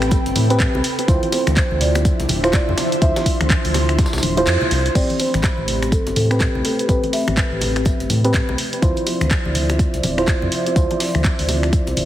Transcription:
Already playing: A1 C4 G4 A4 B4 G5 B5
0.02 finger snap, snare, closed hi-hat
0.11 kick, closed hi-hat, tambourine, high bongo
0.26 G1, closed hi-hat
0.35 A2, open hi-hat, tambourine, high bongo, high conga, low conga
0.50 C4 G4 B4, closed hi-hat
0.60 kick, snare, clap, closed hi-hat, tambourine
0.74 C2, high bongo, low conga
0.84 D4, open hi-hat, tambourine
0.99 closed hi-hat, high bongo
1.07 D2 F3 E4 F4 C5, kick, closed hi-hat, tambourine
1.23 E5, closed hi-hat, high conga
1.32 C5, open hi-hat, tambourine, high bongo
1.47 D2, finger snap, closed hi-hat, high conga
1.57 C5, kick, snare, clap, closed hi-hat, tambourine, high bongo
1.71 D2, high conga
1.81 D5, open hi-hat, tambourine, low conga
1.95 finger snap, closed hi-hat, high bongo
2.05 C6, kick, closed hi-hat, tambourine
2.20 C2, closed hi-hat, high bongo
2.29 D1, open hi-hat, tambourine, high conga, low conga
2.43 E4 F4 C5, finger snap, snare, closed hi-hat
2.53 D5, kick, snare, clap, closed hi-hat, tambourine, high bongo
2.68 F2, low conga
2.78 snare, open hi-hat, tambourine, high bongo
2.92 closed hi-hat
3.01 D2 E4 F4 C5 E5, kick, closed hi-hat, tambourine
3.16 snare, closed hi-hat, tambourine, high bongo, high conga
3.26 kick, open hi-hat, tambourine
3.41 D2, finger snap, closed hi-hat, high bongo, high conga
3.50 kick, clap, closed hi-hat, tambourine
3.65 D2, closed hi-hat, open hi-hat, high conga
3.74 snare, open hi-hat, tambourine, high bongo, low conga
3.89 finger snap, closed hi-hat
3.98 kick, snare, closed hi-hat, tambourine, high bongo
4.06 snare, tambourine
4.13 C2, snare, tambourine
4.18 snare, tambourine
4.23 D1, open hi-hat, tambourine, high conga, low conga
4.37 E4 F4 C5, closed hi-hat, high bongo
4.47 F2, snare, clap, closed hi-hat, tambourine
4.61 high bongo, low conga
4.71 C2, open hi-hat, tambourine
4.86 closed hi-hat
4.95 A1 A3 C4 G4 C5 D5 B5, kick, closed hi-hat, tambourine, crash
5.10 closed hi-hat, high conga
5.19 C5, open hi-hat, tambourine, high bongo
5.34 A1, finger snap, closed hi-hat, high conga
5.43 kick, snare, clap, closed hi-hat, tambourine, high bongo
5.58 A1, high conga
5.68 open hi-hat, tambourine, low conga
5.82 finger snap, closed hi-hat, high bongo
5.92 A4, kick, closed hi-hat, tambourine
6.07 G1, closed hi-hat, high bongo
6.16 A2 A4, open hi-hat, tambourine, high conga, low conga
6.30 C4 G4 B4, finger snap, snare, closed hi-hat
6.40 kick, snare, clap, closed hi-hat, tambourine, high bongo
6.55 C2, low conga
6.65 A4, open hi-hat, tambourine, high bongo
6.79 closed hi-hat
6.88 A1 C4 G4 B4, kick, closed hi-hat, tambourine
7.03 closed hi-hat, high bongo, high conga
7.13 E5, snare, open hi-hat
7.28 A1, finger snap, closed hi-hat, high bongo, high conga
7.37 kick, snare, clap, closed hi-hat, tambourine
7.52 A1, high conga
7.61 snare, open hi-hat, tambourine, high bongo, low conga
7.76 finger snap, snare, closed hi-hat
7.85 kick, closed hi-hat, tambourine, high bongo
8.00 G1, closed hi-hat
8.10 A2, open hi-hat, tambourine, high conga, low conga
8.24 C4 G4 B4, closed hi-hat, high bongo
8.34 kick, snare, clap, closed hi-hat, tambourine
8.49 C2, high bongo, low conga
8.58 F3 D5 E5, open hi-hat, tambourine
8.73 closed hi-hat
8.82 D2 E4 F4 C5, kick, closed hi-hat, tambourine, high bongo
8.97 closed hi-hat, high conga
9.06 open hi-hat, tambourine, high bongo
9.21 D2, finger snap, closed hi-hat, high conga
9.31 kick, snare, clap, closed hi-hat, tambourine
9.45 D2, high bongo, high conga
9.55 open hi-hat, tambourine, low conga
9.69 finger snap, closed hi-hat, high bongo
9.79 kick, closed hi-hat, tambourine
9.94 C2, closed hi-hat
10.03 D1, open hi-hat, tambourine, high bongo, high conga, low conga
10.18 E4 F4 C5, finger snap, snare, closed hi-hat
10.28 kick, snare, clap, closed hi-hat, tambourine, high bongo
10.42 F2, low conga
10.52 open hi-hat, tambourine
10.66 closed hi-hat, high bongo
10.76 D2 E4 F4 C5, kick, closed hi-hat, tambourine
10.91 closed hi-hat, high bongo, high conga
11.00 snare, open hi-hat
11.15 D2, finger snap, closed hi-hat, high conga
11.24 kick, snare, clap, closed hi-hat, tambourine, high bongo
11.39 D2, open hi-hat, high conga
11.48 snare, open hi-hat, tambourine, high bongo, low conga
11.63 finger snap, snare, closed hi-hat
11.73 kick, closed hi-hat, tambourine
11.87 C2, closed hi-hat, high bongo
11.97 D1, open hi-hat, tambourine, high conga, low conga

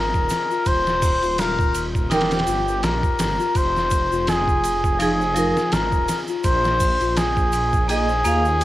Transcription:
Already playing: G#1 G#4 A#4
0.14 D#1, kick, shaker
0.29 G#4, snare, ride, shaker
0.50 F4, shaker
0.66 D#1 C5, kick, ride, shaker
0.87 snare, shaker
1.02 kick, open hi-hat, shaker
1.23 D#1 F4, ride, shaker
1.38 A#4, snare, ride, shaker
1.59 kick, shaker
1.75 ride, shaker
1.95 kick, shaker
2.10 D#4 G4 A#4 G5, snare, ride, shaker
2.21 snare, ride
2.31 C5, snare, ride, shaker
2.39 snare, ride
2.47 G1 F4, ride, shaker
2.68 shaker
2.83 A#1 G4 A#4, snare, ride, shaker
3.03 kick, shaker
3.19 G1 G4, snare, ride, shaker
3.39 F4, shaker
3.55 F1 C5, kick, ride, shaker
3.76 snare, shaker
3.91 kick, ride, shaker
4.12 F1 F4, shaker
4.27 G#4, snare, ride, shaker
4.48 kick, shaker
4.64 ride, shaker
4.84 kick, shaker
4.99 F3 D#4 G#4, ride, shaker
5.20 C5, shaker
5.35 F3 D#4 F4 A#4, ride, shaker
5.57 snare, shaker
5.72 G#1 G#4 A#4, snare, ride, shaker
5.92 D#1, kick, shaker
6.08 G#4, snare, ride, shaker
6.28 F4, shaker
6.44 A#1 C5, kick, ride, shaker
6.64 snare, shaker
6.80 kick, open hi-hat, shaker
7.01 A#1 F4, ride, shaker
7.17 G#4, snare, ride, shaker
7.37 kick, shaker
7.52 ride, shaker
7.73 kick, shaker
7.88 A#3 D#4 G#4 D#5, ride, shaker
8.09 C5, shaker
8.24 D#2 A#3 F4 G#4 F5, ride, shaker
8.45 shaker
8.61 G#4, ride, shaker

